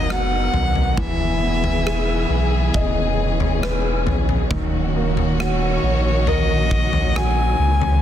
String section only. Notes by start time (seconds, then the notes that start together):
Already playing: A#3 B3 D#4
0.97 E3 E4 G#4
2.73 C#4
4.50 D#3 A#3 F#4